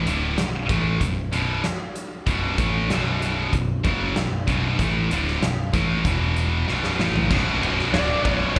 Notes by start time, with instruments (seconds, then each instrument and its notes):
0.06 picked electric bass D1, overdriven electric guitar D2 A2 D3, closed hi-hat
0.37 picked electric bass B0, overdriven electric guitar B1 F#2, snare, closed hi-hat
0.69 picked electric bass A1, overdriven electric guitar A2 E3 A3, kick, closed hi-hat
1.01 picked electric bass B0, overdriven electric guitar B1 F#2, kick, closed hi-hat
1.32 picked electric bass B0, overdriven electric guitar B1 F#2 B2, closed hi-hat
1.64 snare, closed hi-hat
1.95 closed hi-hat
2.26 picked electric bass B0, overdriven electric guitar B1 F#2 B2, kick, closed hi-hat
2.58 picked electric bass A1, overdriven electric guitar A2 E3 A3, kick, closed hi-hat
2.88 picked electric bass B0, overdriven electric guitar B1 F#2 B2, snare, closed hi-hat
3.22 closed hi-hat
3.53 picked electric bass B0, overdriven electric guitar B1 F#2, kick, closed hi-hat
3.84 picked electric bass F#1, overdriven electric guitar F#2 C#3 F#3, kick, closed hi-hat
4.15 picked electric bass B0, overdriven electric guitar B1 F#2, snare, closed hi-hat
4.47 picked electric bass B0, overdriven electric guitar B1 F#2 B2, kick, closed hi-hat
4.79 picked electric bass A1, overdriven electric guitar A2 E3 A3, kick, closed hi-hat
5.10 picked electric bass D1, overdriven electric guitar D2 A2 D3, closed hi-hat
5.27 snare
5.41 picked electric bass B0, overdriven electric guitar B1 F#2, snare, closed hi-hat
5.73 picked electric bass A1, overdriven electric guitar A2 E3 A3, kick, closed hi-hat
6.05 picked electric bass E1, overdriven electric guitar E2 B2 E3, kick, closed hi-hat
6.36 closed hi-hat
6.67 picked electric bass B0, overdriven electric guitar B1 F#2 B2, snare
6.84 snare
6.98 picked electric bass A1, overdriven electric guitar A2 E3 A3, snare
7.16 floor tom
7.30 picked electric bass B0, overdriven electric guitar B1 F#2 B2, distorted electric guitar F#3 D4, kick, crash
7.62 picked electric bass B0, overdriven electric guitar B1 F#2 B2, ride
7.79 snare
7.92 picked electric bass D1, overdriven electric guitar B1 F#2 B2, lead electric guitar D5, snare, ride
8.23 picked electric bass B0, overdriven electric guitar B1 F#2 B2, lead electric guitar C#5, kick, ride
8.56 picked electric bass B0, overdriven electric guitar B1, lead electric guitar B4